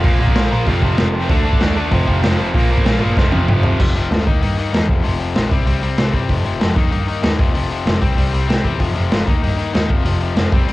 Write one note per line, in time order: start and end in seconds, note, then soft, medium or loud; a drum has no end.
0.04 0.19 A#1 loud
0.04 0.21 A#2 medium
0.04 0.21 F3 medium
0.04 0.19 A#3 loud
0.04 kick loud
0.04 open hi-hat medium
0.20 0.35 A#1 medium
0.20 0.35 A#2 medium
0.20 0.37 F3 medium
0.20 0.37 A#3 loud
0.28 kick loud
0.35 0.51 A#1 medium
0.35 0.53 A#2 medium
0.35 0.53 F3 loud
0.35 0.51 A#3 medium
0.35 snare loud
0.35 open hi-hat medium
0.51 0.66 A#2 medium
0.51 0.67 A#2 medium
0.51 0.69 F3 medium
0.51 0.66 A#3 medium
0.67 0.82 F1 loud
0.67 0.84 F2 loud
0.67 0.83 C3 medium
0.67 0.83 F3 loud
0.67 kick loud
0.67 open hi-hat medium
0.82 0.97 F1 medium
0.82 0.98 F2 medium
0.82 0.98 C3 medium
0.82 1.00 F3 medium
0.82 kick loud
0.98 1.28 F1 loud
0.98 1.13 F2 loud
0.98 1.13 C3 loud
0.98 1.13 F3 loud
0.98 snare loud
0.98 open hi-hat medium
1.14 1.29 F2 medium
1.14 1.29 C3 medium
1.14 1.31 F3 loud
1.29 1.44 D2 loud
1.29 1.45 D3 loud
1.29 1.45 A3 loud
1.29 1.44 D4 loud
1.29 kick loud
1.29 open hi-hat medium
1.45 1.60 D2 medium
1.45 1.59 D3 medium
1.45 1.60 A3 medium
1.45 1.61 D4 medium
1.53 kick medium
1.60 1.91 D#2 medium
1.60 1.75 D3 loud
1.60 1.74 A3 loud
1.60 1.74 D4 loud
1.60 snare loud
1.60 open hi-hat soft
1.75 1.91 D3 medium
1.75 1.91 A3 medium
1.75 1.90 D4 medium
1.91 2.07 F1 loud
1.91 2.07 F2 loud
1.91 2.07 C3 loud
1.91 2.07 F3 loud
1.91 kick loud
1.91 open hi-hat medium
2.07 2.22 F1 medium
2.07 2.21 F2 medium
2.07 2.22 C3 medium
2.07 2.23 F3 medium
2.07 kick loud
2.22 2.38 F1 loud
2.22 2.38 F2 loud
2.22 2.38 C3 loud
2.22 2.37 F3 loud
2.22 snare loud
2.22 open hi-hat medium
2.38 2.53 F1 medium
2.38 2.54 F2 medium
2.38 2.53 C3 medium
2.38 2.53 F3 loud
2.53 2.68 A#1 medium
2.53 2.70 A#2 medium
2.53 2.69 F3 medium
2.53 2.69 A#3 loud
2.53 kick loud
2.53 open hi-hat medium
2.69 2.84 A#1 medium
2.69 2.84 A#2 medium
2.69 2.84 F3 medium
2.69 2.85 A#3 medium
2.78 kick loud
2.85 3.00 A#1 loud
2.85 3.01 A#2 loud
2.85 3.00 F3 loud
2.85 3.00 A#3 loud
2.85 snare loud
2.85 open hi-hat medium
3.00 3.16 G1 medium
3.00 3.16 A#2 medium
3.00 3.16 F3 medium
3.00 3.16 A#3 loud
3.16 3.32 F1 medium
3.16 3.32 F2 loud
3.16 3.32 C3 loud
3.16 3.31 F3 loud
3.16 kick loud
3.16 snare medium
3.32 3.47 F1 medium
3.32 3.47 F2 medium
3.32 3.47 C3 medium
3.32 3.48 F3 medium
3.32 high tom medium
3.48 3.78 F1 loud
3.48 3.64 F2 medium
3.48 3.63 C3 loud
3.48 3.63 F3 medium
3.48 mid tom medium
3.63 3.78 F2 medium
3.63 3.79 C3 medium
3.63 3.78 F3 loud
3.63 floor tom medium
3.79 3.90 F1 medium
3.79 3.96 F2 medium
3.79 3.95 C3 medium
3.79 3.94 F3 loud
3.79 kick loud
3.79 crash loud
3.95 4.06 F1 medium
3.95 4.10 F2 medium
3.95 4.11 C3 medium
3.95 4.11 F3 medium
3.95 open hi-hat medium
4.11 4.21 D2 loud
4.11 4.25 F2 medium
4.11 4.26 C3 medium
4.11 4.26 F3 medium
4.11 snare medium
4.11 open hi-hat medium
4.26 4.37 D#2 medium
4.26 4.42 D#3 loud
4.26 4.41 A#3 medium
4.26 4.41 D#4 loud
4.26 kick loud
4.26 open hi-hat soft
4.42 4.63 G2 loud
4.42 4.57 D#3 medium
4.42 4.58 A#3 medium
4.42 4.58 D#4 medium
4.42 open hi-hat medium
4.58 4.72 D#3 medium
4.58 4.71 A#3 medium
4.58 4.71 D#4 medium
4.58 open hi-hat medium
4.72 4.84 E2 medium
4.72 4.88 D#3 medium
4.72 4.88 A#3 medium
4.72 4.87 D#4 medium
4.72 snare loud
4.72 open hi-hat medium
4.88 5.00 F1 medium
4.88 5.04 F2 medium
4.88 5.03 C3 loud
4.88 5.02 F3 medium
4.88 kick loud
5.03 5.25 F1 medium
5.03 5.18 F2 medium
5.03 5.19 C3 medium
5.03 5.20 F3 loud
5.03 open hi-hat medium
5.19 5.35 F2 medium
5.19 5.35 C3 medium
5.19 5.33 F3 medium
5.19 open hi-hat medium
5.35 5.46 A#1 medium
5.35 5.51 F2 medium
5.35 5.50 C3 medium
5.35 5.50 F3 medium
5.35 snare medium
5.35 open hi-hat medium
5.51 5.62 C2 medium
5.51 5.67 C3 medium
5.51 5.66 G3 loud
5.51 5.65 C4 loud
5.51 kick loud
5.51 open hi-hat medium
5.67 5.77 C2 medium
5.67 5.81 C3 medium
5.67 5.81 G3 medium
5.67 5.82 C4 medium
5.67 open hi-hat medium
5.82 5.93 C2 medium
5.82 5.98 C3 medium
5.82 5.98 G3 medium
5.82 5.97 C4 loud
5.82 open hi-hat medium
5.98 6.09 C3 medium
5.98 6.12 C3 medium
5.98 6.13 G3 medium
5.98 6.14 C4 medium
5.98 snare loud
5.98 open hi-hat medium
6.13 6.24 G1 medium
6.13 6.28 C3 medium
6.13 6.29 G3 loud
6.13 6.29 C4 loud
6.13 kick medium
6.13 open hi-hat medium
6.29 6.40 F1 medium
6.29 6.45 F2 loud
6.29 6.45 C3 loud
6.29 6.44 F3 medium
6.29 kick loud
6.29 open hi-hat medium
6.45 6.55 F1 medium
6.45 6.59 F2 medium
6.45 6.59 C3 medium
6.45 6.60 F3 medium
6.45 open hi-hat medium
6.60 6.75 F2 medium
6.60 6.71 F2 medium
6.60 6.75 C3 medium
6.60 6.76 F3 medium
6.60 snare medium
6.60 open hi-hat medium
6.76 6.87 D#2 medium
6.76 6.91 D#3 medium
6.76 6.91 A#3 medium
6.76 6.90 D#4 loud
6.76 kick loud
6.76 open hi-hat medium
6.92 7.13 G2 medium
6.92 7.06 D#3 medium
6.92 7.07 A#3 medium
6.92 7.08 D#4 loud
6.92 open hi-hat medium
7.07 7.23 D#3 medium
7.07 7.22 A#3 medium
7.07 7.21 D#4 medium
7.07 open hi-hat medium
7.23 7.34 D#2 loud
7.23 7.39 D#3 medium
7.23 7.38 A#3 medium
7.23 7.38 D#4 medium
7.23 snare loud
7.23 open hi-hat medium
7.39 7.49 F1 medium
7.39 7.54 F2 medium
7.39 7.54 C3 loud
7.39 7.53 F3 loud
7.39 kick loud
7.39 open hi-hat medium
7.54 7.75 F1 medium
7.54 7.69 F2 medium
7.54 7.70 C3 medium
7.54 7.70 F3 loud
7.54 open hi-hat medium
7.71 7.85 F2 medium
7.71 7.85 C3 medium
7.71 7.84 F3 medium
7.71 open hi-hat medium
7.85 7.96 F1 medium
7.85 8.01 F2 medium
7.85 7.99 C3 medium
7.85 8.00 F3 loud
7.85 snare loud
7.85 open hi-hat medium
8.01 8.12 C2 medium
8.01 8.16 C3 medium
8.01 8.16 G3 loud
8.01 8.15 C4 loud
8.01 kick loud
8.01 open hi-hat medium
8.16 8.28 C2 loud
8.16 8.31 C3 medium
8.16 8.32 G3 loud
8.16 8.33 C4 loud
8.16 open hi-hat medium
8.32 8.44 C2 medium
8.32 8.48 C3 medium
8.32 8.47 G3 medium
8.32 8.46 C4 medium
8.32 open hi-hat medium
8.48 8.62 C3 medium
8.48 8.60 C3 medium
8.48 8.63 G3 medium
8.48 8.64 C4 loud
8.48 snare loud
8.48 open hi-hat medium
8.63 8.75 E2 medium
8.63 8.78 C3 medium
8.63 8.79 G3 medium
8.63 8.80 C4 medium
8.63 kick medium
8.63 open hi-hat medium
8.79 8.90 F1 medium
8.79 8.95 F2 medium
8.79 8.94 C3 medium
8.79 8.94 F3 loud
8.79 kick medium
8.79 open hi-hat medium
8.95 9.07 F1 medium
8.95 9.09 F2 medium
8.95 9.10 C3 medium
8.95 9.11 F3 medium
8.95 open hi-hat medium
9.11 9.22 F1 medium
9.11 9.26 F2 medium
9.11 9.26 C3 medium
9.11 9.27 F3 medium
9.11 snare loud
9.11 open hi-hat medium
9.26 9.38 D#2 medium
9.26 9.42 D#3 loud
9.26 9.41 A#3 medium
9.26 9.41 D#4 loud
9.26 kick medium
9.26 open hi-hat medium
9.42 9.64 G2 medium
9.42 9.56 D#3 medium
9.42 9.57 A#3 medium
9.42 9.58 D#4 loud
9.42 open hi-hat medium
9.57 9.73 D#3 medium
9.57 9.73 A#3 loud
9.57 9.72 D#4 medium
9.57 open hi-hat medium
9.73 9.85 D#2 medium
9.73 9.89 D#3 medium
9.73 9.89 A#3 medium
9.73 9.88 D#4 medium
9.73 snare loud
9.73 open hi-hat medium
9.89 10.00 F1 medium
9.89 10.05 F2 medium
9.89 10.04 C3 loud
9.89 10.04 F3 loud
9.89 kick loud
9.89 open hi-hat medium
10.05 10.26 F1 medium
10.05 10.20 F2 medium
10.05 10.21 C3 loud
10.05 10.21 F3 loud
10.05 open hi-hat medium
10.21 10.37 F2 medium
10.21 10.35 C3 medium
10.21 10.35 F3 medium
10.21 open hi-hat medium
10.36 10.47 F1 medium
10.36 10.52 F2 medium
10.36 10.51 C3 medium
10.36 10.51 F3 medium
10.36 snare medium
10.36 open hi-hat medium
10.52 10.63 C2 medium
10.52 10.68 C3 medium
10.52 10.67 G3 medium
10.52 10.67 C4 loud
10.52 kick loud
10.52 open hi-hat medium
10.68 10.73 C2 medium
10.68 10.73 C3 medium
10.68 10.73 G3 loud
10.68 10.73 C4 loud
10.68 open hi-hat medium